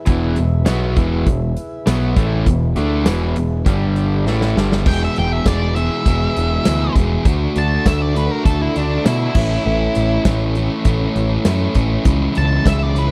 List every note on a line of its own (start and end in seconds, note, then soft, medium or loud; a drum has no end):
0.06 0.36 E1 medium
0.06 0.37 E2 medium
0.06 0.38 B2 loud
0.06 0.38 E3 loud
0.06 2.45 E4 medium
0.06 2.45 G#4 medium
0.06 2.44 B4 medium
0.06 2.46 E5 medium
0.06 kick loud
0.06 closed hi-hat loud
0.35 0.66 E1 medium
0.35 0.61 E2 medium
0.35 0.61 B2 medium
0.35 closed hi-hat medium
0.39 0.63 E2 medium
0.39 0.63 B2 medium
0.66 0.96 B1 loud
0.66 0.97 B2 loud
0.66 0.97 F#3 loud
0.66 0.98 B3 medium
0.66 snare loud
0.66 closed hi-hat medium
0.66 tambourine loud
0.96 1.25 E1 medium
0.96 1.26 E2 loud
0.96 1.26 B2 medium
0.96 1.27 E3 loud
0.96 kick loud
0.96 closed hi-hat medium
1.26 1.55 E1 medium
1.26 1.52 E2 medium
1.26 1.52 B2 medium
1.26 kick medium
1.26 closed hi-hat medium
1.57 closed hi-hat medium
1.86 2.15 B1 medium
1.86 2.16 B2 loud
1.86 2.17 F#3 medium
1.86 2.16 B3 loud
1.86 snare loud
1.86 closed hi-hat loud
1.86 tambourine loud
2.16 2.45 A1 loud
2.16 2.47 A2 medium
2.16 2.47 E3 medium
2.16 2.47 A3 loud
2.16 kick loud
2.16 closed hi-hat medium
2.46 2.75 E1 medium
2.46 2.72 E2 medium
2.46 2.72 B2 medium
2.46 3.66 E4 medium
2.46 3.66 G#4 medium
2.46 3.65 B4 medium
2.46 kick medium
2.46 closed hi-hat medium
2.76 3.05 D2 loud
2.76 3.06 D3 medium
2.76 3.07 A3 medium
2.76 3.07 D4 loud
2.76 closed hi-hat medium
3.06 3.35 E1 loud
3.06 3.36 E2 medium
3.06 3.35 B2 loud
3.06 3.36 E3 loud
3.06 snare loud
3.06 closed hi-hat medium
3.06 tambourine loud
3.36 3.65 E1 medium
3.36 3.61 E2 medium
3.36 3.61 B2 medium
3.36 closed hi-hat medium
3.65 4.23 G1 medium
3.65 4.25 G2 medium
3.65 4.26 D3 loud
3.65 4.26 G3 loud
3.65 4.26 D4 medium
3.65 4.26 G4 medium
3.65 4.26 D5 medium
3.65 4.26 G5 medium
3.65 kick loud
3.65 closed hi-hat medium
3.96 closed hi-hat medium
4.25 4.54 A1 medium
4.25 4.56 A2 medium
4.25 4.57 E3 medium
4.25 4.57 A3 loud
4.25 4.83 E4 medium
4.25 4.83 G#4 medium
4.25 4.84 B4 medium
4.25 4.83 E5 medium
4.25 snare medium
4.41 snare medium
4.56 4.84 G1 medium
4.56 4.85 G2 medium
4.56 4.86 D3 medium
4.56 4.87 G3 medium
4.56 snare medium
4.72 snare medium
4.84 5.07 E1 medium
4.84 5.45 E2 medium
4.84 5.46 B2 loud
4.84 5.47 E3 medium
4.84 5.47 G#3 loud
4.84 5.47 B3 loud
4.84 7.23 E4 medium
4.84 7.23 G#4 medium
4.84 7.23 B4 medium
4.84 7.23 E5 medium
4.84 5.02 G5 loud
4.84 kick loud
4.84 crash loud
4.88 5.49 G#4 loud
5.04 5.18 E5 medium
5.16 5.39 E1 loud
5.16 5.33 G5 medium
5.16 closed hi-hat medium
5.33 5.47 E5 medium
5.46 5.88 E1 medium
5.46 5.75 E2 medium
5.46 5.76 B2 medium
5.46 5.76 E3 medium
5.46 5.77 G#3 medium
5.46 5.77 B3 medium
5.46 5.76 D5 medium
5.46 kick medium
5.46 snare loud
5.46 closed hi-hat loud
5.46 tambourine loud
5.50 5.77 G#4 medium
5.76 6.06 E2 medium
5.76 6.07 B2 loud
5.76 6.07 E3 medium
5.76 6.08 G#3 medium
5.76 6.08 B3 medium
5.76 6.08 G#4 loud
5.76 6.93 E5 medium
5.76 closed hi-hat medium
6.06 6.27 E1 medium
6.06 6.65 E2 medium
6.06 6.66 B2 medium
6.06 6.67 E3 medium
6.06 6.68 G#3 loud
6.06 6.68 B3 loud
6.06 6.68 G#4 loud
6.06 kick medium
6.06 closed hi-hat loud
6.37 6.58 E1 medium
6.37 closed hi-hat medium
6.65 6.88 D2 medium
6.65 6.97 E2 medium
6.65 6.96 B2 medium
6.65 6.97 E3 medium
6.65 6.97 G#3 medium
6.65 6.98 G#4 loud
6.65 snare loud
6.65 closed hi-hat loud
6.65 tambourine loud
6.70 6.98 B3 medium
6.96 7.17 E1 medium
6.96 7.25 E2 medium
6.96 7.25 B2 medium
6.96 7.26 E3 medium
6.96 7.26 G#3 medium
6.96 7.26 B3 medium
6.96 7.26 G#4 loud
6.96 kick medium
6.96 closed hi-hat medium
7.25 7.46 D2 medium
7.25 7.85 D3 medium
7.25 7.87 A3 loud
7.25 9.33 D4 medium
7.25 7.85 D4 loud
7.25 9.34 F#4 medium
7.25 7.87 F#4 loud
7.25 9.34 A4 medium
7.25 9.34 D5 medium
7.25 kick loud
7.25 closed hi-hat medium
7.56 7.77 D2 loud
7.56 7.87 A5 loud
7.56 closed hi-hat medium
7.86 8.28 D2 loud
7.86 8.14 D3 medium
7.86 8.16 A3 medium
7.86 8.16 D4 medium
7.86 8.15 F#4 medium
7.86 8.02 E5 loud
7.86 kick medium
7.86 snare loud
7.86 closed hi-hat loud
7.86 tambourine loud
8.02 8.16 D5 medium
8.15 8.45 D3 medium
8.15 8.46 A3 medium
8.15 8.46 D4 loud
8.15 8.47 F#4 loud
8.15 8.31 B4 medium
8.15 closed hi-hat medium
8.31 8.45 A#4 medium
8.45 8.67 D2 medium
8.45 9.05 D3 loud
8.45 9.06 A3 loud
8.45 9.06 D4 loud
8.45 9.07 F#4 loud
8.45 8.60 A4 loud
8.45 kick medium
8.45 closed hi-hat loud
8.62 8.76 E4 loud
8.76 8.97 D2 medium
8.76 9.06 D4 loud
8.76 closed hi-hat medium
9.05 9.27 B2 medium
9.05 9.35 D3 medium
9.05 9.35 A3 medium
9.05 9.35 D4 medium
9.05 10.22 E4 loud
9.05 9.36 F#4 loud
9.05 snare loud
9.05 closed hi-hat loud
9.05 tambourine loud
9.35 9.56 A1 medium
9.35 9.63 A2 medium
9.35 9.65 E3 loud
9.35 9.64 A3 loud
9.35 12.03 C#4 medium
9.35 9.65 C#4 loud
9.35 12.04 E4 medium
9.35 9.66 E4 medium
9.35 12.03 A4 medium
9.35 12.03 C#5 medium
9.35 kick loud
9.35 crash loud
9.64 9.87 A1 medium
9.64 10.25 A2 loud
9.64 10.26 E3 loud
9.64 10.26 A3 loud
9.64 10.27 C#4 loud
9.64 10.28 E4 loud
9.95 10.17 A1 loud
9.95 closed hi-hat medium
10.25 10.68 A1 medium
10.25 10.54 A2 medium
10.25 10.57 E3 medium
10.25 10.56 A3 medium
10.25 10.57 C#4 medium
10.25 10.58 E4 medium
10.25 kick medium
10.25 snare loud
10.25 closed hi-hat loud
10.25 tambourine loud
10.55 10.84 A2 loud
10.55 10.86 E3 medium
10.55 10.86 A3 medium
10.55 10.86 C#4 loud
10.55 10.88 E4 medium
10.55 closed hi-hat medium
10.85 11.06 A1 medium
10.85 11.45 A2 medium
10.85 11.47 E3 loud
10.85 11.46 A3 loud
10.85 11.46 C#4 loud
10.85 11.48 E4 loud
10.85 kick medium
10.85 closed hi-hat loud
11.16 11.37 A1 medium
11.16 closed hi-hat medium
11.45 11.67 F#2 medium
11.45 11.74 A2 medium
11.45 11.76 E3 medium
11.45 11.76 A3 medium
11.45 11.76 C#4 medium
11.45 11.78 E4 loud
11.45 snare loud
11.45 closed hi-hat loud
11.45 tambourine loud
11.75 11.97 A1 medium
11.75 12.04 A2 medium
11.75 12.06 E3 medium
11.75 12.05 A3 medium
11.75 12.05 C#4 loud
11.75 12.08 E4 medium
11.75 kick medium
11.75 closed hi-hat medium
12.05 12.27 C#2 loud
12.05 12.65 C#3 loud
12.05 12.67 E3 loud
12.05 13.11 G#3 medium
12.05 12.67 G#3 loud
12.05 12.68 C#4 loud
12.05 13.11 E4 medium
12.05 12.68 E4 loud
12.05 13.11 C#5 medium
12.05 kick loud
12.05 closed hi-hat loud
12.35 12.58 C#2 medium
12.35 12.66 A5 loud
12.35 closed hi-hat medium
12.65 13.07 C#2 loud
12.65 12.95 C#3 medium
12.65 12.96 E3 medium
12.65 12.97 G#3 medium
12.65 12.96 C#4 medium
12.65 12.97 E4 medium
12.65 12.83 E5 medium
12.65 kick medium
12.65 snare loud
12.65 closed hi-hat loud
12.65 tambourine loud
12.83 12.97 D5 medium
12.96 13.11 C#3 medium
12.96 13.11 E3 medium
12.96 13.11 G#3 loud
12.96 13.11 C#4 loud
12.96 13.11 E4 loud
12.96 13.11 B4 medium
12.96 closed hi-hat medium